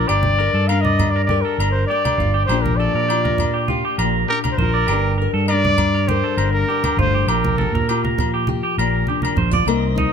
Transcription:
Already playing: nylon-string guitar D4 G4
0.08 fingered electric bass G1, nylon-string guitar G2, clean electric guitar G4, trumpet D5, low agogo
0.23 high conga
0.38 clean electric guitar A#4, nylon-string guitar A#4
0.54 fingered electric bass G2, clean electric guitar A4
0.68 nylon-string guitar D4, clean electric guitar A#4, trumpet F5, low agogo
0.81 trumpet D#5, high conga
0.85 clean electric guitar D5
0.99 nylon-string guitar G3, low conga, low agogo
1.11 trumpet D5
1.16 clean electric guitar A#4
1.25 trumpet D5
1.29 clean electric guitar G4, nylon-string guitar A#4, high conga
1.42 clean electric guitar A4, trumpet A#4
1.58 fingered electric bass G1, clean electric guitar A#4, muted nylon-string guitar stroke, low agogo
1.71 trumpet C5
1.87 clean electric guitar G4, trumpet D5
1.91 muted nylon-string guitar stroke
2.05 clean electric guitar G4, high conga, low agogo
2.18 fingered electric bass G1, clean electric guitar F4, muted nylon-string guitar stroke, low conga
2.34 clean electric guitar G4
2.46 fingered electric bass A#1, clean electric guitar G4, trumpet C5, low agogo
2.50 nylon-string guitar A#2 F3 D4 F4 G4
2.62 trumpet A#4, high conga
2.77 nylon-string guitar G4, clean electric guitar A4, trumpet D5
2.94 fingered electric bass A#2, clean electric guitar A#4
3.08 nylon-string guitar F4, clean electric guitar G4, low agogo
3.25 clean electric guitar A#4, high conga
3.38 low conga, low agogo
3.54 clean electric guitar G4
3.68 clean electric guitar F4, nylon-string guitar G4, high conga
3.85 clean electric guitar G4
3.98 fingered electric bass A#1, nylon-string guitar A#2, clean electric guitar A#4, low agogo
4.29 nylon-string guitar D4, clean electric guitar G4, trumpet A#4
4.44 clean electric guitar A#4, high conga, low agogo
4.52 trumpet C5
4.58 fingered electric bass A#1, trumpet A#4, clean electric guitar C5, low conga
4.62 nylon-string guitar F4
4.74 clean electric guitar D5
4.87 fingered electric bass G1, nylon-string guitar G2 G3, clean electric guitar G4, low agogo
4.92 nylon-string guitar D4, muted nylon-string guitar stroke
5.18 clean electric guitar A#4, nylon-string guitar A#4
5.33 fingered electric bass G2, clean electric guitar A4
5.48 clean electric guitar A#4, trumpet D5, low agogo
5.52 nylon-string guitar D4
5.65 clean electric guitar D5, high conga
5.78 nylon-string guitar G3, low conga, low agogo
5.94 clean electric guitar A#4
6.08 clean electric guitar G4, nylon-string guitar A#4, trumpet C5, high conga
6.24 clean electric guitar A4
6.37 fingered electric bass G1, nylon-string guitar D3, clean electric guitar A#4, low agogo
6.53 trumpet A#4
6.68 nylon-string guitar G2, clean electric guitar G4
6.84 clean electric guitar G4, high conga, low agogo
6.97 fingered electric bass G1, nylon-string guitar A2, clean electric guitar F4, trumpet C5, low conga
7.14 clean electric guitar G4
7.27 fingered electric bass A#1, nylon-string guitar A#2, clean electric guitar G4, trumpet A#4, low agogo
7.45 high conga
7.58 nylon-string guitar G4, clean electric guitar A4, high conga
7.72 fingered electric bass A#2, clean electric guitar A#4, low conga
7.89 nylon-string guitar F4, clean electric guitar G4, low agogo
8.05 clean electric guitar A#4, high conga
8.18 nylon-string guitar F3, low conga, low agogo
8.34 clean electric guitar G4
8.47 nylon-string guitar G4, muted clean electric guitar stroke, high conga
8.63 clean electric guitar G4
8.78 fingered electric bass A#1, nylon-string guitar A#2, clean electric guitar A#4, low agogo
9.07 nylon-string guitar D4, clean electric guitar G4, high conga
9.22 clean electric guitar A#4, high conga, low agogo
9.36 fingered electric bass A#1, nylon-string guitar D4, clean electric guitar C5, low conga
9.51 nylon-string guitar F4, clean electric guitar D5, low conga
9.66 fingered electric bass C2, nylon-string guitar C3 G3 A#3 D#4 A#4, tonewheel organ C5 D#5 A#5, low agogo
9.96 nylon-string guitar D#4, clean electric guitar D#4, high conga

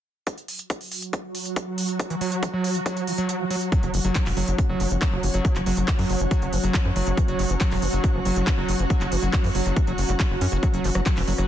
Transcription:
0.27 synth drone F#3 F#4, kick, closed hi-hat
0.38 closed hi-hat
0.48 open hi-hat
0.59 closed hi-hat
0.70 kick, closed hi-hat
0.81 open hi-hat
0.92 open hi-hat
1.02 closed hi-hat
1.13 kick, closed hi-hat
1.35 open hi-hat
1.46 closed hi-hat
1.56 kick, closed hi-hat
1.78 open hi-hat
1.89 closed hi-hat
1.99 kick, closed hi-hat
2.10 acid bass E3, closed hi-hat
2.21 acid bass F#3, open hi-hat
2.32 closed hi-hat
2.43 acid bass E3, kick, closed hi-hat
2.53 acid bass F#3
2.64 open hi-hat
2.75 acid bass E3, closed hi-hat
2.86 acid bass F#3, kick, closed hi-hat
2.97 closed hi-hat
3.07 acid bass E3, open hi-hat
3.18 acid bass F#3, closed hi-hat
3.29 closed hi-hat
3.40 acid bass E3
3.51 acid bass F#3, open hi-hat
3.61 closed hi-hat
3.72 acid bass F#3, synth drone F#3 F#4, analog synth pad C#4, kick, closed hi-hat
3.83 analog synth bass F#1, analog synth pad F#4, closed hi-hat
3.94 analog synth bass F#1, acid bass E3, open hi-hat
3.99 analog synth pad F#5
4.04 analog synth bass F#1, acid bass F#3, closed hi-hat
4.09 analog synth pad C#5
4.15 kick, clap, closed hi-hat
4.26 analog synth bass E1, acid bass E3, clap, open hi-hat
4.37 analog synth bass F#1, acid bass F#3, open hi-hat
4.48 analog synth bass F#1, closed hi-hat
4.58 acid bass E3, kick, closed hi-hat
4.69 analog synth bass F#1, acid bass F#3
4.80 analog synth bass F#1, open hi-hat
4.91 analog synth bass F#1, acid bass E3, closed hi-hat
5.02 acid bass F#3, kick, clap, closed hi-hat
5.12 analog synth bass F#1
5.23 analog synth bass F#1, acid bass E3, open hi-hat
5.34 analog synth bass F#1, acid bass F#3, closed hi-hat
5.45 kick, closed hi-hat
5.56 analog synth bass F#1, acid bass E3, clap, closed hi-hat
5.66 analog synth bass F#1, acid bass F#3, open hi-hat
5.77 analog synth bass F#1, closed hi-hat
5.88 acid bass E3, kick, clap, closed hi-hat
5.99 analog synth bass F#2, acid bass F#3, open hi-hat
6.10 analog synth bass F#1, open hi-hat
6.20 analog synth bass F#1, acid bass E3, closed hi-hat
6.31 acid bass F#3, kick, closed hi-hat
6.42 analog synth bass F#1, closed hi-hat
6.53 analog synth bass F#1, acid bass E3, open hi-hat
6.63 analog synth bass F#1, acid bass F#3, closed hi-hat
6.74 kick, clap, closed hi-hat
6.85 analog synth bass F#2, acid bass E3
6.96 analog synth bass F#1, acid bass F#3, open hi-hat
7.07 analog synth bass F#1, closed hi-hat
7.17 acid bass E3, kick, closed hi-hat
7.28 analog synth bass F#1, acid bass F#3, closed hi-hat
7.39 analog synth bass F#1, open hi-hat
7.50 analog synth bass F#1, acid bass E3, closed hi-hat
7.61 acid bass F#3, kick, clap, closed hi-hat
7.71 analog synth bass E1, clap, open hi-hat
7.82 analog synth bass F#1, acid bass E3, open hi-hat
7.93 analog synth bass F#1, acid bass F#3, closed hi-hat
8.04 kick, closed hi-hat
8.15 analog synth bass F#1, acid bass E3
8.25 analog synth bass F#1, acid bass F#3, open hi-hat
8.36 analog synth bass F#1, closed hi-hat
8.47 acid bass E3, kick, clap, closed hi-hat
8.58 analog synth bass F#1, acid bass F#3
8.69 analog synth bass F#1, open hi-hat
8.79 analog synth bass F#1, acid bass E3, closed hi-hat
8.90 acid bass F#3, kick, closed hi-hat
9.01 analog synth bass F#1, clap, closed hi-hat
9.12 analog synth bass F#1, acid bass E3, open hi-hat
9.23 analog synth bass F#1, acid bass F#3, closed hi-hat
9.33 kick, clap, closed hi-hat
9.44 analog synth bass F#2, acid bass E3, open hi-hat
9.55 analog synth bass F#1, acid bass F#3, open hi-hat
9.66 analog synth bass F#1, closed hi-hat
9.76 acid bass E3, kick, closed hi-hat
9.87 analog synth bass F#1, acid bass F#3, closed hi-hat
9.98 analog synth bass F#1, open hi-hat
10.09 analog synth bass F#1, acid bass G3, closed hi-hat
10.20 acid bass F#3, kick, clap, closed hi-hat
10.30 analog synth bass F#1
10.41 analog synth bass F#2, acid bass C#4, open hi-hat
10.52 analog synth bass F#1, acid bass F#4, closed hi-hat
10.63 acid bass F#3, synth drone B4, kick, cross-stick, closed hi-hat
10.72 analog synth bass F#1, acid bass F#3, analog synth pad B4, closed hi-hat
10.84 analog synth bass F#1, acid bass E3, open hi-hat
10.95 analog synth bass F#1, acid bass F#3, cross-stick, closed hi-hat
11.06 acid bass F#3, kick, clap, closed hi-hat
11.17 analog synth bass E1, acid bass E3, clap, open hi-hat
11.28 analog synth bass F#1, acid bass F#3, open hi-hat
11.38 analog synth bass F#1, acid bass F#3, cross-stick, closed hi-hat

